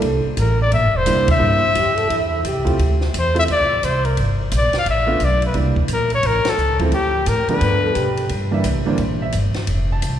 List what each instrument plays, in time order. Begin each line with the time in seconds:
Already playing: trombone A4
0.02 upright bass C2, kick, ride
0.37 upright bass A1, trumpet A#4, kick, hi-hat pedal, ride
0.62 trumpet D5
0.72 upright bass A#1, trumpet E5, kick, ride
0.83 upright bass G1
0.95 upright bass E1, trumpet C5
1.06 upright bass C2, grand piano G3 A#3 D4 E4, kick, hi-hat pedal, ride
1.28 trumpet E5, kick, ride
1.39 upright bass G2, grand piano G3 A#3 D4 E4
1.64 trombone E4
1.75 upright bass F2, trombone G4, kick, hi-hat pedal, ride
1.96 trombone A4, ride
2.09 upright bass E2, trombone E4, kick, ride
2.45 upright bass C2, trombone G4, kick, hi-hat pedal, ride
2.64 grand piano A3 C4 E4 F4, kick, ride
2.79 upright bass D2, kick, ride
3.01 snare
3.14 upright bass E2, kick, hi-hat pedal, ride
3.19 trumpet C5
3.34 grand piano A3 C4 E4 F4, ride
3.39 trumpet E5
3.48 upright bass D2, trumpet D5, kick, ride
3.59 upright bass C2
3.71 upright bass A1
3.83 upright bass C2, trumpet C5, kick, hi-hat pedal, ride
4.05 trumpet A#4, ride
4.17 upright bass G1, kick, ride
4.51 upright bass A#1, kick, hi-hat pedal, ride
4.57 trumpet D5
4.73 muted upright bass stroke, snare, ride
4.79 trumpet F5
4.86 upright bass A1, kick, ride
4.90 trumpet E5
5.06 grand piano A3 B3 D4 F4
5.20 upright bass B1, kick, hi-hat pedal, ride
5.24 trumpet D5
5.42 ride
5.46 trumpet B4
5.54 upright bass C2, grand piano G3 A#3 D4 E4, kick, ride
5.76 muted upright bass stroke, kick
5.88 upright bass A#1, kick, hi-hat pedal, ride
5.93 trumpet A#4
6.10 ride
6.15 trumpet C#5
6.23 upright bass A1, trumpet A#4, kick, ride
6.45 snare, ride
6.49 trumpet A4
6.57 upright bass C#2, hi-hat pedal
6.79 grand piano F3 A3 C4 E4, kick, ride
6.92 upright bass D2, trumpet G4, kick, ride
7.26 upright bass A2, trumpet A#4, kick, hi-hat pedal, ride
7.48 grand piano F3 A3 B3 D4, trumpet B4, muted upright bass stroke, ride
7.61 upright bass G2, kick, ride
7.83 trombone A4
7.95 upright bass B2, trombone G4, kick, hi-hat pedal, ride
8.17 ride
8.29 upright bass G2, kick, ride
8.51 grand piano E3 G3 A#3 D4 E5
8.64 upright bass C2, kick, hi-hat pedal, ride
8.76 upright bass A#1
8.86 upright bass G1, grand piano E3 G3 A#3 D4 C5
8.98 upright bass A#1, kick, ride
9.22 grand piano E5
9.32 upright bass G1, kick, hi-hat pedal, ride
9.54 muted upright bass stroke, snare, ride
9.67 upright bass F1, kick, ride
9.92 grand piano A5
10.02 upright bass C2, kick, hi-hat pedal, ride